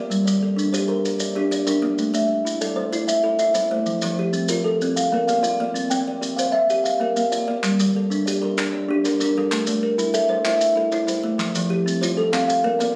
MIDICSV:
0, 0, Header, 1, 4, 480
1, 0, Start_track
1, 0, Tempo, 313480
1, 164, Time_signature, 12, 3, 24, 8
1, 19837, End_track
2, 0, Start_track
2, 0, Title_t, "Kalimba"
2, 0, Program_c, 0, 108
2, 0, Note_on_c, 0, 65, 75
2, 0, Note_on_c, 0, 74, 59
2, 155, Note_off_c, 0, 65, 0
2, 155, Note_on_c, 0, 55, 69
2, 370, Note_off_c, 0, 74, 0
2, 388, Note_on_c, 0, 74, 62
2, 639, Note_off_c, 0, 55, 0
2, 865, Note_on_c, 0, 62, 76
2, 1113, Note_on_c, 0, 72, 67
2, 1115, Note_off_c, 0, 74, 0
2, 1348, Note_on_c, 0, 70, 80
2, 1353, Note_off_c, 0, 62, 0
2, 1835, Note_off_c, 0, 70, 0
2, 1837, Note_off_c, 0, 72, 0
2, 1841, Note_on_c, 0, 74, 62
2, 2073, Note_on_c, 0, 62, 74
2, 2300, Note_off_c, 0, 74, 0
2, 2319, Note_on_c, 0, 74, 60
2, 2533, Note_off_c, 0, 62, 0
2, 2551, Note_on_c, 0, 70, 61
2, 2552, Note_on_c, 0, 62, 78
2, 3037, Note_off_c, 0, 62, 0
2, 3040, Note_off_c, 0, 74, 0
2, 3040, Note_on_c, 0, 57, 72
2, 3276, Note_off_c, 0, 70, 0
2, 3285, Note_on_c, 0, 76, 59
2, 3521, Note_off_c, 0, 57, 0
2, 3753, Note_on_c, 0, 64, 70
2, 3998, Note_on_c, 0, 74, 64
2, 4003, Note_off_c, 0, 76, 0
2, 4226, Note_on_c, 0, 72, 81
2, 4237, Note_off_c, 0, 64, 0
2, 4712, Note_on_c, 0, 76, 63
2, 4714, Note_off_c, 0, 72, 0
2, 4720, Note_off_c, 0, 74, 0
2, 4957, Note_on_c, 0, 64, 69
2, 5171, Note_off_c, 0, 76, 0
2, 5189, Note_on_c, 0, 76, 63
2, 5407, Note_off_c, 0, 64, 0
2, 5425, Note_on_c, 0, 64, 77
2, 5425, Note_on_c, 0, 72, 67
2, 5911, Note_on_c, 0, 53, 74
2, 5914, Note_off_c, 0, 64, 0
2, 5916, Note_off_c, 0, 76, 0
2, 6134, Note_off_c, 0, 72, 0
2, 6152, Note_on_c, 0, 72, 64
2, 6397, Note_off_c, 0, 53, 0
2, 6628, Note_on_c, 0, 60, 72
2, 6868, Note_on_c, 0, 70, 65
2, 6878, Note_off_c, 0, 72, 0
2, 7109, Note_on_c, 0, 69, 79
2, 7116, Note_off_c, 0, 60, 0
2, 7356, Note_off_c, 0, 69, 0
2, 7597, Note_off_c, 0, 70, 0
2, 7600, Note_on_c, 0, 77, 65
2, 7841, Note_on_c, 0, 58, 73
2, 8061, Note_off_c, 0, 77, 0
2, 8080, Note_on_c, 0, 77, 65
2, 8309, Note_on_c, 0, 74, 62
2, 8312, Note_on_c, 0, 65, 79
2, 8323, Note_off_c, 0, 58, 0
2, 8794, Note_on_c, 0, 60, 75
2, 8799, Note_off_c, 0, 65, 0
2, 8803, Note_off_c, 0, 77, 0
2, 9036, Note_on_c, 0, 79, 59
2, 9037, Note_off_c, 0, 74, 0
2, 9280, Note_off_c, 0, 60, 0
2, 9515, Note_on_c, 0, 67, 68
2, 9744, Note_on_c, 0, 77, 57
2, 9761, Note_off_c, 0, 79, 0
2, 9985, Note_on_c, 0, 76, 80
2, 10001, Note_off_c, 0, 67, 0
2, 10236, Note_off_c, 0, 76, 0
2, 10455, Note_off_c, 0, 77, 0
2, 10474, Note_on_c, 0, 77, 62
2, 10713, Note_on_c, 0, 58, 70
2, 10945, Note_off_c, 0, 77, 0
2, 10964, Note_on_c, 0, 77, 57
2, 11200, Note_off_c, 0, 58, 0
2, 11203, Note_on_c, 0, 74, 62
2, 11207, Note_on_c, 0, 65, 69
2, 11683, Note_on_c, 0, 55, 76
2, 11685, Note_off_c, 0, 77, 0
2, 11687, Note_off_c, 0, 65, 0
2, 11925, Note_off_c, 0, 74, 0
2, 12164, Note_off_c, 0, 55, 0
2, 12407, Note_on_c, 0, 62, 75
2, 12644, Note_on_c, 0, 74, 65
2, 12886, Note_off_c, 0, 62, 0
2, 12889, Note_on_c, 0, 70, 81
2, 13344, Note_off_c, 0, 74, 0
2, 13362, Note_on_c, 0, 74, 63
2, 13367, Note_off_c, 0, 70, 0
2, 13605, Note_on_c, 0, 62, 72
2, 13847, Note_on_c, 0, 70, 68
2, 14069, Note_off_c, 0, 70, 0
2, 14070, Note_off_c, 0, 62, 0
2, 14083, Note_off_c, 0, 74, 0
2, 14087, Note_on_c, 0, 70, 65
2, 14089, Note_on_c, 0, 62, 78
2, 14566, Note_off_c, 0, 62, 0
2, 14574, Note_on_c, 0, 57, 77
2, 14806, Note_off_c, 0, 70, 0
2, 15049, Note_off_c, 0, 57, 0
2, 15283, Note_on_c, 0, 64, 78
2, 15524, Note_on_c, 0, 76, 66
2, 15759, Note_on_c, 0, 72, 85
2, 15763, Note_off_c, 0, 64, 0
2, 15983, Note_off_c, 0, 76, 0
2, 16001, Note_on_c, 0, 76, 69
2, 16221, Note_off_c, 0, 76, 0
2, 16239, Note_on_c, 0, 76, 66
2, 16241, Note_off_c, 0, 72, 0
2, 16468, Note_on_c, 0, 64, 74
2, 16715, Note_on_c, 0, 72, 64
2, 16932, Note_off_c, 0, 64, 0
2, 16934, Note_off_c, 0, 72, 0
2, 16950, Note_on_c, 0, 64, 73
2, 16953, Note_on_c, 0, 72, 61
2, 16960, Note_off_c, 0, 76, 0
2, 17429, Note_on_c, 0, 53, 76
2, 17436, Note_off_c, 0, 64, 0
2, 17677, Note_off_c, 0, 72, 0
2, 17915, Note_off_c, 0, 53, 0
2, 18160, Note_on_c, 0, 60, 74
2, 18396, Note_on_c, 0, 72, 68
2, 18637, Note_on_c, 0, 69, 85
2, 18640, Note_off_c, 0, 60, 0
2, 18873, Note_on_c, 0, 77, 68
2, 18879, Note_off_c, 0, 69, 0
2, 19092, Note_off_c, 0, 77, 0
2, 19111, Note_on_c, 0, 77, 66
2, 19118, Note_off_c, 0, 72, 0
2, 19353, Note_on_c, 0, 58, 73
2, 19584, Note_on_c, 0, 74, 60
2, 19802, Note_off_c, 0, 74, 0
2, 19835, Note_off_c, 0, 77, 0
2, 19836, Note_off_c, 0, 58, 0
2, 19837, End_track
3, 0, Start_track
3, 0, Title_t, "Kalimba"
3, 0, Program_c, 1, 108
3, 0, Note_on_c, 1, 58, 71
3, 0, Note_on_c, 1, 74, 64
3, 405, Note_off_c, 1, 58, 0
3, 423, Note_on_c, 1, 55, 79
3, 644, Note_off_c, 1, 74, 0
3, 650, Note_on_c, 1, 69, 60
3, 892, Note_off_c, 1, 55, 0
3, 1128, Note_on_c, 1, 67, 80
3, 1366, Note_off_c, 1, 69, 0
3, 1605, Note_off_c, 1, 67, 0
3, 1614, Note_on_c, 1, 62, 72
3, 2085, Note_on_c, 1, 67, 68
3, 2088, Note_off_c, 1, 62, 0
3, 2316, Note_on_c, 1, 62, 79
3, 2788, Note_on_c, 1, 58, 63
3, 2792, Note_on_c, 1, 55, 74
3, 2799, Note_off_c, 1, 62, 0
3, 2803, Note_off_c, 1, 67, 0
3, 3271, Note_on_c, 1, 57, 81
3, 3277, Note_off_c, 1, 55, 0
3, 3515, Note_off_c, 1, 58, 0
3, 3756, Note_off_c, 1, 57, 0
3, 4001, Note_on_c, 1, 69, 76
3, 4480, Note_on_c, 1, 64, 81
3, 4482, Note_off_c, 1, 69, 0
3, 4954, Note_on_c, 1, 69, 67
3, 4961, Note_off_c, 1, 64, 0
3, 5192, Note_on_c, 1, 64, 75
3, 5677, Note_off_c, 1, 64, 0
3, 5678, Note_off_c, 1, 69, 0
3, 5682, Note_on_c, 1, 72, 69
3, 5687, Note_on_c, 1, 57, 75
3, 6165, Note_off_c, 1, 57, 0
3, 6167, Note_on_c, 1, 53, 87
3, 6403, Note_off_c, 1, 72, 0
3, 6415, Note_on_c, 1, 67, 62
3, 6645, Note_off_c, 1, 53, 0
3, 6887, Note_on_c, 1, 65, 79
3, 7129, Note_off_c, 1, 67, 0
3, 7366, Note_off_c, 1, 65, 0
3, 7379, Note_on_c, 1, 60, 73
3, 7612, Note_off_c, 1, 60, 0
3, 7864, Note_on_c, 1, 70, 66
3, 8096, Note_on_c, 1, 58, 77
3, 8558, Note_off_c, 1, 58, 0
3, 8575, Note_off_c, 1, 70, 0
3, 8576, Note_on_c, 1, 58, 74
3, 8580, Note_on_c, 1, 74, 67
3, 9047, Note_on_c, 1, 60, 80
3, 9051, Note_off_c, 1, 58, 0
3, 9284, Note_off_c, 1, 74, 0
3, 9302, Note_on_c, 1, 74, 58
3, 9527, Note_off_c, 1, 60, 0
3, 9787, Note_on_c, 1, 72, 79
3, 10014, Note_off_c, 1, 74, 0
3, 10257, Note_off_c, 1, 72, 0
3, 10260, Note_on_c, 1, 67, 73
3, 10493, Note_off_c, 1, 67, 0
3, 10732, Note_on_c, 1, 70, 68
3, 10970, Note_on_c, 1, 58, 74
3, 11431, Note_off_c, 1, 58, 0
3, 11449, Note_off_c, 1, 70, 0
3, 11449, Note_on_c, 1, 74, 59
3, 11450, Note_on_c, 1, 58, 73
3, 11928, Note_off_c, 1, 58, 0
3, 11941, Note_on_c, 1, 55, 88
3, 12168, Note_off_c, 1, 74, 0
3, 12193, Note_on_c, 1, 69, 67
3, 12413, Note_off_c, 1, 55, 0
3, 12667, Note_on_c, 1, 67, 78
3, 12899, Note_off_c, 1, 69, 0
3, 13132, Note_on_c, 1, 62, 74
3, 13136, Note_off_c, 1, 67, 0
3, 13609, Note_off_c, 1, 62, 0
3, 13635, Note_on_c, 1, 67, 68
3, 13864, Note_on_c, 1, 62, 80
3, 14112, Note_on_c, 1, 70, 65
3, 14334, Note_off_c, 1, 62, 0
3, 14340, Note_off_c, 1, 67, 0
3, 14354, Note_on_c, 1, 69, 63
3, 14360, Note_on_c, 1, 55, 76
3, 14812, Note_on_c, 1, 57, 85
3, 14818, Note_off_c, 1, 70, 0
3, 14822, Note_off_c, 1, 55, 0
3, 15049, Note_on_c, 1, 70, 62
3, 15059, Note_off_c, 1, 69, 0
3, 15288, Note_off_c, 1, 57, 0
3, 15525, Note_on_c, 1, 69, 83
3, 15766, Note_off_c, 1, 70, 0
3, 16004, Note_off_c, 1, 69, 0
3, 16019, Note_on_c, 1, 64, 79
3, 16491, Note_off_c, 1, 64, 0
3, 16493, Note_on_c, 1, 69, 69
3, 16728, Note_on_c, 1, 64, 83
3, 16972, Note_on_c, 1, 72, 65
3, 17202, Note_on_c, 1, 57, 79
3, 17205, Note_off_c, 1, 64, 0
3, 17207, Note_off_c, 1, 69, 0
3, 17682, Note_off_c, 1, 57, 0
3, 17686, Note_off_c, 1, 72, 0
3, 17692, Note_on_c, 1, 53, 89
3, 17916, Note_on_c, 1, 67, 67
3, 18166, Note_off_c, 1, 53, 0
3, 18414, Note_on_c, 1, 65, 85
3, 18638, Note_off_c, 1, 67, 0
3, 18876, Note_on_c, 1, 60, 75
3, 18887, Note_off_c, 1, 65, 0
3, 19118, Note_off_c, 1, 60, 0
3, 19358, Note_on_c, 1, 70, 74
3, 19600, Note_on_c, 1, 58, 79
3, 19837, Note_off_c, 1, 58, 0
3, 19837, Note_off_c, 1, 70, 0
3, 19837, End_track
4, 0, Start_track
4, 0, Title_t, "Drums"
4, 172, Note_on_c, 9, 70, 51
4, 325, Note_off_c, 9, 70, 0
4, 419, Note_on_c, 9, 70, 71
4, 572, Note_off_c, 9, 70, 0
4, 897, Note_on_c, 9, 70, 61
4, 1051, Note_off_c, 9, 70, 0
4, 1136, Note_on_c, 9, 70, 70
4, 1289, Note_off_c, 9, 70, 0
4, 1610, Note_on_c, 9, 70, 56
4, 1763, Note_off_c, 9, 70, 0
4, 1835, Note_on_c, 9, 70, 70
4, 1988, Note_off_c, 9, 70, 0
4, 2325, Note_on_c, 9, 70, 58
4, 2478, Note_off_c, 9, 70, 0
4, 2559, Note_on_c, 9, 70, 63
4, 2712, Note_off_c, 9, 70, 0
4, 3038, Note_on_c, 9, 70, 51
4, 3191, Note_off_c, 9, 70, 0
4, 3281, Note_on_c, 9, 70, 74
4, 3434, Note_off_c, 9, 70, 0
4, 3778, Note_on_c, 9, 70, 63
4, 3931, Note_off_c, 9, 70, 0
4, 4002, Note_on_c, 9, 70, 75
4, 4155, Note_off_c, 9, 70, 0
4, 4485, Note_on_c, 9, 70, 56
4, 4638, Note_off_c, 9, 70, 0
4, 4724, Note_on_c, 9, 70, 67
4, 4877, Note_off_c, 9, 70, 0
4, 5192, Note_on_c, 9, 70, 54
4, 5345, Note_off_c, 9, 70, 0
4, 5429, Note_on_c, 9, 70, 66
4, 5582, Note_off_c, 9, 70, 0
4, 5913, Note_on_c, 9, 70, 52
4, 6066, Note_off_c, 9, 70, 0
4, 6151, Note_on_c, 9, 70, 66
4, 6304, Note_off_c, 9, 70, 0
4, 6633, Note_on_c, 9, 70, 54
4, 6786, Note_off_c, 9, 70, 0
4, 6866, Note_on_c, 9, 70, 76
4, 7019, Note_off_c, 9, 70, 0
4, 7371, Note_on_c, 9, 70, 53
4, 7524, Note_off_c, 9, 70, 0
4, 7608, Note_on_c, 9, 70, 74
4, 7761, Note_off_c, 9, 70, 0
4, 8092, Note_on_c, 9, 70, 51
4, 8246, Note_off_c, 9, 70, 0
4, 8326, Note_on_c, 9, 70, 68
4, 8479, Note_off_c, 9, 70, 0
4, 8814, Note_on_c, 9, 70, 52
4, 8967, Note_off_c, 9, 70, 0
4, 9052, Note_on_c, 9, 70, 73
4, 9205, Note_off_c, 9, 70, 0
4, 9535, Note_on_c, 9, 70, 62
4, 9688, Note_off_c, 9, 70, 0
4, 9777, Note_on_c, 9, 70, 73
4, 9930, Note_off_c, 9, 70, 0
4, 10257, Note_on_c, 9, 70, 53
4, 10410, Note_off_c, 9, 70, 0
4, 10497, Note_on_c, 9, 70, 66
4, 10650, Note_off_c, 9, 70, 0
4, 10972, Note_on_c, 9, 70, 56
4, 11125, Note_off_c, 9, 70, 0
4, 11211, Note_on_c, 9, 70, 65
4, 11364, Note_off_c, 9, 70, 0
4, 11689, Note_on_c, 9, 39, 52
4, 11700, Note_on_c, 9, 70, 58
4, 11842, Note_off_c, 9, 39, 0
4, 11853, Note_off_c, 9, 70, 0
4, 11939, Note_on_c, 9, 70, 76
4, 12092, Note_off_c, 9, 70, 0
4, 12423, Note_on_c, 9, 70, 62
4, 12576, Note_off_c, 9, 70, 0
4, 12669, Note_on_c, 9, 70, 80
4, 12822, Note_off_c, 9, 70, 0
4, 13133, Note_on_c, 9, 70, 54
4, 13143, Note_on_c, 9, 39, 69
4, 13286, Note_off_c, 9, 70, 0
4, 13296, Note_off_c, 9, 39, 0
4, 13855, Note_on_c, 9, 70, 60
4, 13875, Note_on_c, 9, 39, 21
4, 14008, Note_off_c, 9, 70, 0
4, 14028, Note_off_c, 9, 39, 0
4, 14099, Note_on_c, 9, 70, 66
4, 14252, Note_off_c, 9, 70, 0
4, 14571, Note_on_c, 9, 39, 64
4, 14573, Note_on_c, 9, 70, 54
4, 14724, Note_off_c, 9, 39, 0
4, 14726, Note_off_c, 9, 70, 0
4, 14803, Note_on_c, 9, 70, 70
4, 14956, Note_off_c, 9, 70, 0
4, 15296, Note_on_c, 9, 70, 59
4, 15449, Note_off_c, 9, 70, 0
4, 15532, Note_on_c, 9, 70, 72
4, 15685, Note_off_c, 9, 70, 0
4, 15998, Note_on_c, 9, 70, 53
4, 16003, Note_on_c, 9, 39, 57
4, 16151, Note_off_c, 9, 70, 0
4, 16156, Note_off_c, 9, 39, 0
4, 16245, Note_on_c, 9, 70, 70
4, 16398, Note_off_c, 9, 70, 0
4, 16720, Note_on_c, 9, 70, 49
4, 16731, Note_on_c, 9, 39, 18
4, 16873, Note_off_c, 9, 70, 0
4, 16884, Note_off_c, 9, 39, 0
4, 16966, Note_on_c, 9, 70, 66
4, 17119, Note_off_c, 9, 70, 0
4, 17447, Note_on_c, 9, 70, 49
4, 17451, Note_on_c, 9, 39, 51
4, 17600, Note_off_c, 9, 70, 0
4, 17604, Note_off_c, 9, 39, 0
4, 17687, Note_on_c, 9, 70, 64
4, 17840, Note_off_c, 9, 70, 0
4, 18185, Note_on_c, 9, 70, 56
4, 18338, Note_off_c, 9, 70, 0
4, 18422, Note_on_c, 9, 70, 70
4, 18575, Note_off_c, 9, 70, 0
4, 18889, Note_on_c, 9, 39, 54
4, 18898, Note_on_c, 9, 70, 53
4, 19042, Note_off_c, 9, 39, 0
4, 19051, Note_off_c, 9, 70, 0
4, 19135, Note_on_c, 9, 70, 80
4, 19288, Note_off_c, 9, 70, 0
4, 19607, Note_on_c, 9, 70, 60
4, 19611, Note_on_c, 9, 39, 19
4, 19760, Note_off_c, 9, 70, 0
4, 19765, Note_off_c, 9, 39, 0
4, 19837, End_track
0, 0, End_of_file